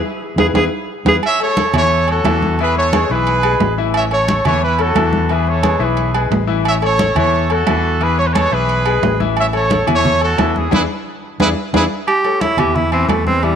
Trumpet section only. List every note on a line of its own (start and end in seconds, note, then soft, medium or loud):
1.26 1.40 C#5 medium
1.26 1.41 E5 loud
1.41 1.72 A4 medium
1.41 1.73 C#5 loud
1.77 2.07 A4 medium
1.77 2.07 C#5 loud
2.10 2.60 F#4 medium
2.10 2.60 A4 loud
2.61 2.75 G#4 medium
2.61 2.76 B4 loud
2.78 3.09 A4 medium
2.78 3.08 C#5 loud
3.12 3.75 G#4 medium
3.12 3.75 B4 loud
3.96 4.04 C#5 medium
3.96 4.03 E5 loud
4.12 4.43 A4 medium
4.12 4.43 C#5 medium
4.47 4.62 A4 medium
4.47 4.62 C#5 loud
4.63 4.79 E4 medium
4.63 4.78 B4 loud
4.81 5.31 F#4 medium
4.81 5.31 A4 medium
5.32 5.48 G#4 medium
5.32 5.48 B4 medium
5.49 5.82 A4 medium
5.49 5.82 C#5 loud
5.84 6.23 G#4 medium
5.84 6.23 B4 medium
6.68 6.76 C#5 medium
6.68 6.75 E5 loud
6.84 7.15 A4 medium
6.84 7.15 C#5 loud
7.18 7.49 A4 medium
7.18 7.49 C#5 loud
7.51 8.02 F#4 medium
7.51 8.01 A4 loud
8.02 8.19 G#4 medium
8.02 8.18 B4 loud
8.19 8.25 A4 medium
8.19 8.25 C#5 loud
8.26 8.32 B4 medium
8.32 8.52 A4 medium
8.32 8.52 C#5 loud
8.53 9.20 G#4 medium
8.53 9.20 B4 loud
9.39 9.46 C#5 medium
9.39 9.46 E5 loud
9.56 9.87 A4 medium
9.56 9.86 C#5 loud
9.94 10.20 A4 medium
9.94 10.20 C#5 loud
10.24 10.54 F#4 medium
10.24 10.54 A4 loud
10.57 10.72 E4 medium
10.57 10.72 G#4 medium
10.73 10.81 E4 loud
10.73 10.81 G#4 loud
10.73 10.81 B4 loud
11.41 11.49 E4 loud
11.41 11.49 G#4 medium
11.41 11.49 B4 loud
11.75 11.83 E4 loud
11.75 11.83 G#4 loud
11.75 11.83 B4 loud